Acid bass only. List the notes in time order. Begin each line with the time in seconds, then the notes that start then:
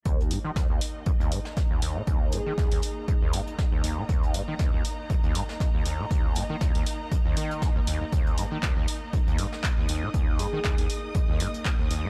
0.06 D#2
0.31 G#2
0.45 D#3
0.56 D#2
0.70 D#2
1.06 F#2
1.20 D#2
1.32 G#2
1.71 D#2
1.82 D#2
1.96 A#2
2.08 D#2
2.33 G#2
2.46 D#3
2.58 D#2
2.71 D#2
3.08 F#2
3.22 D#2
3.33 G#2
3.72 D#2
3.84 D#2
3.98 A#2
4.09 D#2
4.34 G#2
4.48 D#3
4.59 D#2
4.73 D#2
5.10 F#2
5.24 D#2
5.35 G#2
5.74 D#2
5.85 D#2
5.99 A#2
6.11 D#2
6.36 G#2
6.50 D#3
6.61 D#2
6.75 D#2
7.12 F#2
7.25 D#2
7.37 D#3
7.62 D#2
7.76 D#2
7.87 D#2
8.01 D#2
8.13 D#2
8.38 G#2
8.51 D#3
8.63 D#2
8.77 D#2
9.13 F#2
9.27 D#2
9.39 G#2
9.77 D#2
9.89 D#2
10.03 A#2
10.14 D#2
10.39 G#2
10.53 D#3
10.64 D#2
10.78 D#2
11.15 F#2
11.29 D#2
11.40 G#2
11.79 D#2
11.90 D#2
12.04 A#2